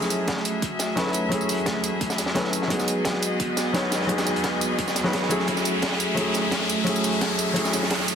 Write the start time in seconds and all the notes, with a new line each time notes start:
Already playing: F#3 A3 C#4 E4 F#4 G#4 E5, riser
0.02 snare, tambourine
0.10 closed hi-hat, tambourine
0.28 kick, snare, closed hi-hat
0.37 snare
0.45 closed hi-hat, tambourine
0.62 kick, closed hi-hat
0.79 snare, closed hi-hat, tambourine
0.96 F#3 A3 C#4 E4 B4, kick, snare, closed hi-hat
1.06 snare
1.13 closed hi-hat, tambourine
1.29 F#3 A3 C#4, kick, closed hi-hat
1.33 E4 G#4
1.41 tambourine
1.49 closed hi-hat, open hi-hat, tambourine
1.58 closed hi-hat
1.66 kick, snare, closed hi-hat
1.84 closed hi-hat, tambourine
2.01 kick, closed hi-hat
2.10 snare, tambourine
2.18 snare, closed hi-hat, tambourine
2.26 snare
2.34 F#3 A3 C#4 E4 B4, kick, snare, closed hi-hat
2.44 snare
2.53 closed hi-hat, tambourine
2.62 snare
2.68 F#3 G#3 B3 D#5, kick, closed hi-hat
2.72 D#4 G#4
2.79 snare, tambourine
2.88 closed hi-hat, tambourine
3.05 kick, snare, closed hi-hat
3.13 snare
3.22 closed hi-hat, tambourine
3.40 kick, closed hi-hat
3.57 snare, closed hi-hat, tambourine
3.73 F#3 G#3 B3 D#4 C#5, kick, snare, closed hi-hat
3.83 snare
3.92 snare, closed hi-hat, tambourine
4.01 snare
4.06 F#3 G#3 B3 D#4, kick, closed hi-hat
4.12 G#4
4.18 snare, closed hi-hat, tambourine
4.26 snare, closed hi-hat, tambourine
4.36 closed hi-hat
4.44 kick, snare, closed hi-hat
4.61 closed hi-hat, tambourine
4.79 kick, closed hi-hat
4.88 snare, tambourine
4.95 snare, closed hi-hat, tambourine
5.04 F#3 G#3 B3 D#4 B4, snare
5.13 kick, snare, closed hi-hat
5.22 snare
5.29 F#3 A3 C#4 E4 G#4 E5, closed hi-hat, tambourine
5.40 snare
5.45 F#3 A3 C#4, kick, closed hi-hat
5.49 E4 G#4
5.57 snare, tambourine
5.65 closed hi-hat, tambourine
5.82 kick, snare, closed hi-hat
5.92 snare
6.00 closed hi-hat, tambourine
6.15 F#3 A3 C#4 E4, kick, closed hi-hat
6.20 G#4
6.34 snare, closed hi-hat, tambourine
6.51 kick, snare, closed hi-hat
6.61 snare
6.69 closed hi-hat, tambourine
6.84 F#3 A3 C#4, kick, closed hi-hat
6.88 E4 G#4
6.96 tambourine
7.04 closed hi-hat, open hi-hat, tambourine
7.13 closed hi-hat
7.21 kick, snare, closed hi-hat
7.39 closed hi-hat, tambourine
7.53 F#3 A3 C#4, kick, closed hi-hat
7.57 E4 G#4
7.65 snare, tambourine
7.73 snare, closed hi-hat, tambourine
7.83 snare
7.90 kick, snare, closed hi-hat
8.00 snare
8.08 closed hi-hat, tambourine